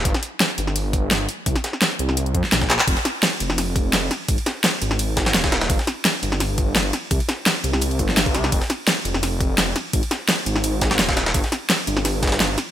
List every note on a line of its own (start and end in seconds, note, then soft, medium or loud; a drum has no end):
0.05 0.14 G1 loud
0.05 kick loud
0.05 closed hi-hat medium
0.05 closed hi-hat loud
0.14 snare soft
0.14 closed hi-hat soft
0.23 closed hi-hat medium
0.40 snare loud
0.40 closed hi-hat medium
0.40 closed hi-hat loud
0.50 closed hi-hat soft
0.58 1.27 G1 medium
0.58 closed hi-hat medium
0.67 snare soft
0.76 closed hi-hat loud
0.76 open hi-hat medium
0.93 kick loud
0.93 closed hi-hat medium
1.11 snare loud
1.11 closed hi-hat medium
1.29 closed hi-hat medium
1.46 1.55 C2 loud
1.46 kick loud
1.46 closed hi-hat loud
1.46 closed hi-hat medium
1.56 snare soft
1.56 closed hi-hat soft
1.64 snare soft
1.64 closed hi-hat medium
1.73 snare soft
1.82 snare loud
1.82 closed hi-hat loud
1.82 closed hi-hat medium
1.91 closed hi-hat soft
1.99 2.34 C2 medium
1.99 closed hi-hat medium
2.09 snare soft
2.17 closed hi-hat loud
2.17 closed hi-hat medium
2.26 closed hi-hat soft
2.35 2.43 F2 medium
2.35 kick medium
2.35 closed hi-hat medium
2.44 snare soft
2.52 2.68 A#1 medium
2.52 snare loud
2.52 closed hi-hat loud
2.52 closed hi-hat medium
2.61 kick loud
2.61 snare medium
2.61 closed hi-hat soft
2.70 2.78 A#1 medium
2.70 snare loud
2.70 clap medium
2.70 closed hi-hat medium
2.79 clap loud
2.79 closed hi-hat soft
2.88 2.96 F1 loud
2.88 kick loud
2.88 closed hi-hat medium
2.88 closed hi-hat loud
2.88 ride medium
2.97 snare soft
2.97 closed hi-hat soft
3.05 snare medium
3.05 closed hi-hat medium
3.23 snare loud
3.23 closed hi-hat medium
3.23 closed hi-hat loud
3.23 ride medium
3.32 closed hi-hat soft
3.40 4.10 F1 medium
3.40 closed hi-hat medium
3.50 snare medium
3.58 snare soft
3.58 closed hi-hat loud
3.58 open hi-hat medium
3.58 ride medium
3.76 kick loud
3.76 closed hi-hat medium
3.93 snare loud
3.93 closed hi-hat loud
3.93 closed hi-hat medium
3.93 ride medium
4.11 snare soft
4.11 closed hi-hat medium
4.28 4.37 G#1 loud
4.28 kick loud
4.28 closed hi-hat loud
4.28 closed hi-hat medium
4.28 ride medium
4.38 closed hi-hat soft
4.46 snare soft
4.46 snare medium
4.46 closed hi-hat medium
4.64 snare loud
4.64 closed hi-hat loud
4.64 closed hi-hat medium
4.64 ride medium
4.73 closed hi-hat soft
4.82 5.36 G#1 medium
4.82 closed hi-hat medium
4.91 snare medium
4.99 closed hi-hat medium
4.99 ride medium
5.17 kick medium
5.17 snare loud
5.17 closed hi-hat medium
5.26 snare soft
5.26 snare loud
5.26 closed hi-hat medium
5.34 5.60 D#1 loud
5.34 snare loud
5.34 closed hi-hat loud
5.34 closed hi-hat medium
5.34 ride medium
5.44 kick loud
5.44 snare loud
5.44 closed hi-hat medium
5.52 snare loud
5.52 snare medium
5.52 closed hi-hat medium
5.61 5.69 D#1 medium
5.61 snare loud
5.61 closed hi-hat medium
5.70 5.78 G1 loud
5.70 kick loud
5.70 closed hi-hat medium
5.70 ride medium
5.79 snare soft
5.79 closed hi-hat soft
5.87 snare medium
5.87 closed hi-hat medium
6.05 snare loud
6.05 closed hi-hat loud
6.05 closed hi-hat medium
6.05 ride medium
6.14 closed hi-hat soft
6.23 6.92 G1 medium
6.23 closed hi-hat medium
6.32 snare medium
6.40 snare soft
6.40 closed hi-hat medium
6.40 open hi-hat medium
6.40 ride medium
6.58 kick loud
6.58 closed hi-hat medium
6.76 snare loud
6.76 closed hi-hat medium
6.76 ride medium
6.93 snare soft
6.93 closed hi-hat medium
7.11 7.19 C2 loud
7.11 kick loud
7.11 closed hi-hat medium
7.11 ride medium
7.20 closed hi-hat soft
7.29 snare soft
7.29 snare medium
7.29 closed hi-hat medium
7.46 snare loud
7.46 closed hi-hat medium
7.46 ride medium
7.56 closed hi-hat soft
7.64 8.01 C2 medium
7.64 closed hi-hat medium
7.73 snare medium
7.81 closed hi-hat medium
7.81 ride medium
7.91 closed hi-hat soft
7.99 8.36 G1 loud
7.99 kick medium
7.99 closed hi-hat medium
8.09 snare soft
8.17 snare loud
8.17 closed hi-hat medium
8.17 ride medium
8.26 kick loud
8.26 closed hi-hat soft
8.34 8.50 C2 loud
8.34 snare soft
8.34 closed hi-hat medium
8.44 snare medium
8.44 closed hi-hat soft
8.52 8.61 F1 loud
8.52 kick loud
8.52 closed hi-hat medium
8.52 ride medium
8.62 snare soft
8.62 closed hi-hat soft
8.70 snare medium
8.70 closed hi-hat medium
8.87 snare loud
8.87 closed hi-hat medium
8.87 ride medium
8.97 closed hi-hat soft
9.05 9.74 F1 medium
9.05 closed hi-hat medium
9.14 snare medium
9.23 snare soft
9.23 closed hi-hat medium
9.23 open hi-hat medium
9.23 ride medium
9.40 kick loud
9.40 closed hi-hat medium
9.58 snare loud
9.58 closed hi-hat medium
9.58 ride medium
9.76 snare soft
9.76 closed hi-hat medium
9.93 10.02 G#1 loud
9.93 kick loud
9.93 closed hi-hat loud
9.93 closed hi-hat medium
9.93 ride medium
10.03 closed hi-hat soft
10.11 snare soft
10.11 snare medium
10.11 closed hi-hat medium
10.29 snare loud
10.29 closed hi-hat medium
10.29 ride medium
10.38 closed hi-hat soft
10.46 11.01 G#1 medium
10.46 closed hi-hat medium
10.56 snare medium
10.64 closed hi-hat medium
10.64 ride medium
10.81 kick medium
10.81 snare loud
10.81 closed hi-hat medium
10.91 snare soft
10.91 snare loud
10.91 closed hi-hat medium
10.99 11.25 D#1 loud
10.99 snare loud
10.99 closed hi-hat medium
10.99 ride medium
11.09 kick loud
11.09 snare loud
11.09 closed hi-hat medium
11.17 snare loud
11.17 snare soft
11.17 closed hi-hat medium
11.26 11.34 D#1 medium
11.26 snare loud
11.26 closed hi-hat medium
11.34 11.43 G1 loud
11.34 kick loud
11.34 closed hi-hat loud
11.34 closed hi-hat medium
11.34 ride medium
11.44 snare soft
11.44 closed hi-hat soft
11.52 snare medium
11.52 closed hi-hat medium
11.70 snare loud
11.70 closed hi-hat loud
11.70 closed hi-hat medium
11.70 ride medium
11.79 closed hi-hat soft
11.87 12.57 G1 medium
11.87 closed hi-hat medium
11.97 snare medium
12.05 snare soft
12.05 closed hi-hat loud
12.05 open hi-hat medium
12.05 ride medium
12.23 kick loud
12.23 snare medium
12.23 closed hi-hat medium
12.27 snare medium
12.27 closed hi-hat medium
12.32 snare loud
12.32 closed hi-hat medium
12.40 snare loud
12.40 closed hi-hat loud
12.40 closed hi-hat medium
12.40 ride medium
12.58 snare soft
12.58 closed hi-hat medium